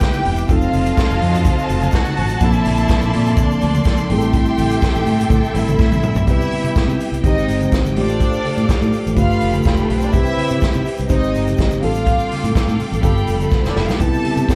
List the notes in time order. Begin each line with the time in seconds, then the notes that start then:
Already playing: G3 B3 C4 E4 G4 B4 E5 G5
0.01 kick, snare, closed hi-hat
0.13 muted conga, high conga, shaker
0.25 E1, open hi-hat, low conga
0.37 closed hi-hat, shaker
0.48 F1 F#3 C4 D#4 F4 A4 C5 D#5 F5 A5, kick, closed hi-hat, muted conga, low conga, shaker
0.61 shaker
0.73 F1, open hi-hat, high conga, shaker
0.86 closed hi-hat, shaker
0.97 kick, snare, closed hi-hat, shaker
1.10 F1, shaker
1.21 F2, open hi-hat, high conga
1.34 closed hi-hat, low conga, shaker
1.45 kick, closed hi-hat, high conga, shaker
1.58 muted conga, shaker
1.69 F1, open hi-hat, shaker
1.81 closed hi-hat, high conga, shaker
1.91 F#4 F#5, kick, snare, closed hi-hat, shaker
2.05 muted conga, high conga, shaker
2.17 A1, open hi-hat, low conga
2.28 closed hi-hat, shaker
2.40 A#1 F3 A#3 C4 D4 E4 A4 D5 E5 C6, kick, closed hi-hat, muted conga, low conga, shaker
2.53 muted conga, shaker
2.64 A#1, open hi-hat, high conga, shaker
2.77 closed hi-hat, shaker
2.88 kick, snare, closed hi-hat, shaker
3.02 A#1, shaker
3.13 A#2, open hi-hat, high conga
3.26 closed hi-hat, low conga, shaker
3.37 D4 D5, kick, closed hi-hat, muted conga, high conga, shaker
3.51 muted conga, shaker
3.61 D2, open hi-hat, shaker
3.74 closed hi-hat, high conga, shaker
3.84 kick, snare, closed hi-hat, shaker
3.97 muted conga, high conga, shaker
4.09 A1 G3 A3 C4 E4 G4 G#4 A4 E5 G5, open hi-hat, low conga
4.18 A4, closed hi-hat, shaker
4.33 kick, closed hi-hat, muted conga, low conga, shaker
4.46 muted conga, shaker
4.58 A1, open hi-hat, high conga, shaker
4.70 closed hi-hat, shaker
4.82 kick, snare, closed hi-hat, muted conga, shaker
4.95 A1, shaker
5.06 A2, open hi-hat, high conga, shaker
5.20 closed hi-hat, low conga, shaker
5.30 A2, kick, closed hi-hat, muted conga, high conga, shaker
5.43 muted conga, shaker
5.54 A1 G3 A3 C4 E4 A4 E5, open hi-hat, shaker
5.68 A1, closed hi-hat, high conga, shaker
5.78 A2, kick, snare, shaker
5.91 A1, high tom, muted conga, high conga, shaker
6.03 mid tom, low conga, shaker
6.15 B1, floor tom, shaker
6.26 C2 G3 B3 C4 E4 G4 E5 G5, kick, closed hi-hat, low conga, shaker
6.30 B4
6.41 muted conga, shaker
6.51 open hi-hat, high conga
6.64 C3, closed hi-hat, shaker
6.75 kick, snare, closed hi-hat, shaker
6.88 C3, shaker
7.00 open hi-hat, shaker
7.12 C2, closed hi-hat, shaker
7.23 G#1 G#3 C4 D#4 G4 C5 D#5, kick, closed hi-hat, high conga, shaker
7.37 muted conga, shaker
7.47 G1, open hi-hat, shaker
7.60 closed hi-hat, high conga, shaker
7.72 G#1, kick, snare, closed hi-hat, shaker
7.85 muted conga, high conga, shaker
7.95 A1 A3 D4 F4 G4 A4 C5 D5 F5 D6, open hi-hat, low conga
8.09 closed hi-hat, shaker
8.20 kick, closed hi-hat, muted conga, low conga, shaker
8.33 shaker
8.45 open hi-hat, high conga
8.56 A2, closed hi-hat, shaker
8.68 muted fingered electric bass stroke, kick, snare, closed hi-hat, muted conga, shaker
8.82 A2, shaker
8.93 open hi-hat, shaker
9.06 A1, closed hi-hat, shaker
9.15 G1 A3 D4 F4 G4 A4 B4 F5 G5 B5, kick, closed hi-hat, high conga, shaker
9.30 muted conga, shaker
9.41 F1, open hi-hat, shaker
9.53 closed hi-hat, high conga, shaker
9.63 E1 F4, kick, closed hi-hat, shaker
9.67 snare
9.75 G3 G4, muted conga, high conga, shaker
9.82 A3 A4
9.88 B1 B3 B4, open hi-hat, low conga
9.97 C4 C5
10.01 D4 D5, closed hi-hat, shaker
10.12 C2 C4 E4 G4 B4 E5, kick, closed hi-hat, muted conga, low conga, shaker
10.16 C5
10.26 shaker
10.37 open hi-hat, high conga
10.49 C3, closed hi-hat, shaker
10.61 muted fingered electric bass stroke, kick, snare, closed hi-hat, muted conga, shaker
10.73 C3, muted conga, shaker
10.85 open hi-hat, shaker
10.97 C2, closed hi-hat, shaker
11.08 G#1 G#3 C4 D#4 G4 C5 D#5 G5, kick, closed hi-hat, high conga, shaker
11.23 muted conga, shaker
11.34 G1, open hi-hat, shaker
11.47 closed hi-hat, high conga, shaker
11.57 G#1, kick, snare, closed hi-hat, muted conga, shaker
11.71 high conga, shaker
11.81 A1 G3 C4 D4 F4 A4 F5 D6, open hi-hat, low conga
11.94 closed hi-hat, shaker
12.07 kick, closed hi-hat, muted conga, low conga, shaker
12.19 muted conga, shaker
12.31 open hi-hat, high conga
12.44 A2, closed hi-hat, shaker
12.55 kick, snare, closed hi-hat, muted conga, shaker
12.68 A2, shaker
12.79 open hi-hat, high conga, shaker
12.92 A1, closed hi-hat, low conga, shaker
13.01 G1 G3 B3 D4 F4 G4 A4 G5 B5, kick, closed hi-hat, muted conga, high conga, shaker
13.16 muted conga, shaker
13.27 F1, open hi-hat, shaker
13.40 A3 A4, closed hi-hat, high conga, shaker
13.51 B3 B4, kick, snare, shaker
13.58 C4 C5
13.64 E1 D4 D5, snare, high conga, shaker
13.75 F1 E4 E5, snare, low conga
13.85 B1 F4 F5, shaker
13.90 G4 G5, snare
13.98 C2 G3 B3 C4 E4 G4 A4 B4 E5 A5, kick, closed hi-hat, muted conga, low conga, shaker
14.13 muted conga, shaker
14.24 open hi-hat, high conga
14.37 C3, closed hi-hat, shaker
14.48 kick, snare, closed hi-hat, muted conga, shaker